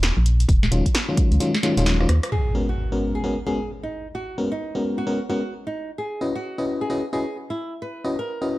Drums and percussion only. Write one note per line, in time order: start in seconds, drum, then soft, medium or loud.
0.03 snare loud
0.03 closed hi-hat medium
0.26 closed hi-hat loud
0.40 closed hi-hat medium
0.49 kick loud
0.49 closed hi-hat medium
0.63 snare medium
0.72 closed hi-hat loud
0.86 kick medium
0.86 closed hi-hat medium
0.95 snare loud
0.95 closed hi-hat medium
1.17 kick loud
1.17 closed hi-hat loud
1.32 closed hi-hat soft
1.40 closed hi-hat medium
1.55 snare medium
1.63 snare medium
1.63 closed hi-hat loud
1.77 closed hi-hat medium
1.86 snare loud
1.86 closed hi-hat medium
2.00 cross-stick soft
2.09 cross-stick medium
2.09 closed hi-hat loud
2.23 cross-stick medium
2.23 closed hi-hat medium